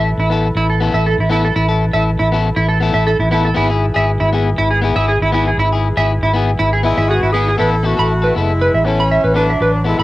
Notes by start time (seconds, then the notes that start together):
Already playing: A1 E4 A4 B4
0.18 A1 E4
0.30 B3 E4 A4
0.55 A1 E4
0.70 A4
0.80 B3 E4 A4
0.94 A1 E4 A4 E5
1.06 A4
1.19 A1 E4
1.30 B3 E4 A4
1.45 A4
1.56 A1 E4
1.69 E4 A4
1.93 A1 E4 A4 E5
2.19 A1 E4
2.32 B3 E4 A4
2.56 A1 E4
2.68 A4
2.80 B3 E4 A4
2.93 A1 E4 A4 E5
3.07 A4
3.19 A1 E4
3.31 B3 E4 A4
3.45 A4
3.54 G#1 B3 E4 G#4
3.70 E4 G#4
3.94 G#1 E4 G#4 E5
4.20 G#1 E4
4.33 B3 E4 G#4
4.58 G#1 E4
4.71 G#4
4.82 B3 E4 G#4
4.96 G#1 E4 G#4 E5
5.08 G#4
5.21 G#1 E4
5.32 B3 E4 G#4
5.48 G#4
5.58 G#1 E4
5.73 E4 G#4
5.97 G#1 E4 G#4 E5
6.22 G#1 E4
6.34 B3 E4 G#4
6.59 G#1 E4
6.73 G#4
6.83 G#3 B3 E4 G#4
6.98 G#1 E4 G#4 E5
7.08 B3 F#4 G#4
7.23 G#1 E4
7.32 B3 E4 G#4
7.48 G#4
7.58 A1 B3 E4 A4 B4
7.83 A3 B3 E4 F#4 A4
7.97 A1 E4 A4 B5
8.22 E4 A4 B4
8.35 F#1 G#3 B3 E4 A4
8.61 B4
8.74 A1 E5
8.85 E3 B3 C#4 E4 A4
9.00 B5
9.11 E5
9.24 A1 B4
9.34 F#3 B3 D4 E4 A4 B4
9.50 E5
9.60 A1 B4
9.84 G#3 B3 E4 A4
9.98 A1 G#3 E4 A4 B5